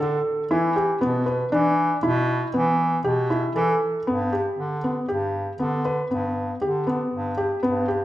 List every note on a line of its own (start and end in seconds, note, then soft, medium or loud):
0.00 0.21 D3 medium
0.00 0.43 A4 medium
0.51 0.95 E3 medium
0.51 0.72 E4 medium
0.76 0.98 G4 medium
1.01 1.45 B2 medium
1.01 1.23 B3 medium
1.26 1.48 B4 medium
1.52 1.96 E3 medium
1.52 1.96 D4 medium
2.03 2.47 B2 loud
2.03 2.47 E4 medium
2.54 2.98 E3 medium
2.54 2.97 B3 medium
3.04 3.49 B2 medium
3.04 3.26 G4 medium
3.30 3.52 E4 medium
3.55 3.77 E3 medium
3.55 3.99 A4 medium
4.06 4.50 G2 medium
4.06 4.29 B3 medium
4.32 4.76 G4 medium
4.58 5.02 D3 medium
4.84 5.05 B3 medium
5.08 5.52 G2 medium
5.08 5.52 G4 medium
5.59 6.03 D3 medium
5.59 5.81 B3 medium
5.85 6.07 B4 medium
6.10 6.54 G2 medium
6.10 6.54 B3 medium
6.61 7.05 D3 medium
6.61 6.83 G4 medium
6.87 7.30 B3 medium
7.12 7.56 G2 medium
7.38 7.59 G4 medium
7.63 8.05 G2 medium
7.63 7.85 B3 medium
7.88 8.05 G4 medium